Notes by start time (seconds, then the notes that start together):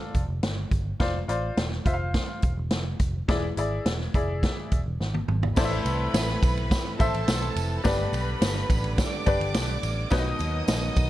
Already playing: F4 A4 D5
0.14 F1, kick, closed hi-hat
0.28 F1
0.43 G1, snare, closed hi-hat
0.71 G1, kick, closed hi-hat
1.00 F1 F4 C5 D5, kick, snare, closed hi-hat
1.28 A1 F4 C5 D5, closed hi-hat
1.57 E1, snare, closed hi-hat
1.71 snare
1.85 F1 F4 C5 E5, kick, closed hi-hat
1.93 F5
2.14 kick, snare, closed hi-hat
2.42 E1, kick, closed hi-hat
2.58 E1
2.71 F1, snare, closed hi-hat
2.99 F1, kick, closed hi-hat
3.28 E1 E3 E4 G#4 D5, kick, snare, closed hi-hat
3.57 G#1 E4 G#4 D5, closed hi-hat
3.86 E1, snare, closed hi-hat
4.00 snare
4.14 F1 E4 G#4 D5, kick, closed hi-hat
4.43 kick, snare, closed hi-hat
4.72 E1, kick, closed hi-hat
4.86 E1
5.00 G#1, snare
5.14 high tom
5.28 G#1, mid tom
5.43 floor tom
5.56 A1 A2 E3 A3 C4 E4 A4 B4 C5 D5 B5, kick, snare, crash, tambourine
5.64 E5
5.85 C2, ride, tambourine
6.14 A1, snare, ride, tambourine
6.28 snare
6.43 B1, kick, ride, tambourine
6.57 ride
6.71 kick, snare, ride, tambourine
6.99 A1 E4 A4 C5 E5 A5, kick, ride, tambourine
7.14 A1, ride
7.28 B1, snare, ride, tambourine
7.56 F1, ride, tambourine
7.84 G1 G2 D3 G3 B3 D4 G4 B4 D5 B5, kick, snare, ride, tambourine
8.13 B1, ride, tambourine
8.41 G1, snare, ride, tambourine
8.56 snare
8.70 A1, kick, ride, tambourine
8.84 ride
8.97 D5 D6, kick, snare, ride, tambourine
9.26 G1 D4 G4 B4 D5, kick, ride, tambourine
9.41 G1, ride
9.54 B1, snare, ride, tambourine
9.83 A1, ride, tambourine
10.10 B1 B2 D#3 F#3 D#4 F#4 B4 C#5 D#5 D#6, kick, snare, ride, tambourine
10.18 D#5
10.39 D#2, ride, tambourine
10.68 A#1, snare, ride, tambourine
10.96 B1, kick, ride, tambourine